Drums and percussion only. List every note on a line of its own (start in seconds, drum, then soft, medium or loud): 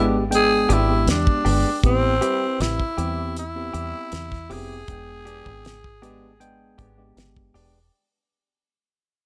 0.32 closed hi-hat medium
0.70 closed hi-hat medium
1.08 snare loud
1.08 closed hi-hat medium
1.27 kick medium
1.46 open hi-hat medium
1.84 kick loud
1.84 closed hi-hat medium
2.22 closed hi-hat medium
2.61 snare loud
2.61 closed hi-hat medium
2.80 kick medium
2.98 closed hi-hat medium
3.36 closed hi-hat medium
3.74 closed hi-hat medium
4.12 snare loud
4.12 closed hi-hat medium
4.32 kick medium
4.32 snare soft
4.51 open hi-hat medium
4.88 kick loud
4.88 closed hi-hat medium
5.27 closed hi-hat medium
5.46 kick medium
5.65 snare loud
5.65 closed hi-hat medium
5.84 kick medium
6.03 closed hi-hat medium
6.41 closed hi-hat medium
6.79 kick medium
6.79 closed hi-hat medium
7.17 snare loud
7.17 closed hi-hat medium
7.36 kick medium
7.55 open hi-hat medium